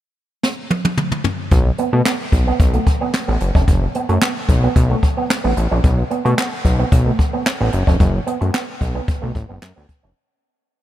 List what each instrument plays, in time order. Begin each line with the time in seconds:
0.43 snare
0.70 high tom
0.85 high tom
0.97 mid tom
1.12 mid tom
1.24 floor tom
1.51 analog synth bass B1, kick, closed hi-hat
1.66 muted clean electric guitar stroke
1.78 clean electric guitar B3, closed hi-hat
1.93 analog synth bass B2, clean electric guitar A3
2.05 clean electric guitar B3, snare, clap, closed hi-hat
2.32 analog synth bass B1, muted clean electric guitar stroke, kick, closed hi-hat
2.47 clean electric guitar B3
2.60 analog synth bass B1, kick, closed hi-hat
2.73 clean electric guitar A3, closed hi-hat
2.87 muted clean electric guitar stroke, kick, closed hi-hat
3.01 clean electric guitar B3
3.14 snare, clap, closed hi-hat
3.28 analog synth bass A1, clean electric guitar B3
3.40 analog synth bass F#1, muted clean electric guitar stroke, closed hi-hat
3.55 analog synth bass F1, clean electric guitar C#4, kick
3.68 analog synth bass F#1, kick, closed hi-hat
3.82 muted clean electric guitar stroke
3.95 clean electric guitar B3, closed hi-hat
4.09 analog synth bass F#2, clean electric guitar A3, closed hi-hat
4.22 clean electric guitar B3, snare, clap, closed hi-hat
4.49 analog synth bass B1, muted clean electric guitar stroke, kick, closed hi-hat
4.63 clean electric guitar B3
4.76 analog synth bass B1, kick, closed hi-hat
4.90 clean electric guitar A3
5.03 muted clean electric guitar stroke, kick, closed hi-hat
5.17 clean electric guitar B3
5.30 snare, clap, closed hi-hat
5.44 analog synth bass A1, clean electric guitar B3
5.57 analog synth bass A1, muted clean electric guitar stroke, closed hi-hat
5.71 analog synth bass A#1, clean electric guitar C#4
5.84 analog synth bass B1, kick, closed hi-hat
5.98 muted clean electric guitar stroke
6.11 clean electric guitar B3, closed hi-hat
6.25 analog synth bass B2, clean electric guitar A3, closed hi-hat
6.38 clean electric guitar B3, snare, clap, closed hi-hat
6.65 analog synth bass B1, muted clean electric guitar stroke, kick, closed hi-hat
6.79 clean electric guitar B3
6.92 analog synth bass B1, kick, closed hi-hat
7.06 clean electric guitar A3
7.19 muted clean electric guitar stroke, kick, closed hi-hat
7.33 clean electric guitar B3
7.46 snare, clap, closed hi-hat
7.60 analog synth bass A1, clean electric guitar B3
7.73 analog synth bass F#1, muted clean electric guitar stroke, closed hi-hat
7.87 analog synth bass F1, clean electric guitar C#4, kick
8.00 analog synth bass F#1, kick, closed hi-hat
8.14 muted clean electric guitar stroke
8.27 clean electric guitar B3, closed hi-hat
8.41 analog synth bass F#2, clean electric guitar A3, closed hi-hat
8.54 clean electric guitar B3, snare, clap, closed hi-hat
8.81 analog synth bass B1, muted clean electric guitar stroke, kick, closed hi-hat
8.95 clean electric guitar B3
9.08 kick, closed hi-hat
9.22 analog synth bass B1, clean electric guitar A3
9.35 analog synth bass A1, muted clean electric guitar stroke, kick, closed hi-hat
9.49 analog synth bass F#1, clean electric guitar B3
9.62 analog synth bass F#2, snare, clap, closed hi-hat
9.76 analog synth bass D2, clean electric guitar B3
9.89 muted clean electric guitar stroke, kick, closed hi-hat
10.03 analog synth bass F1, clean electric guitar C#4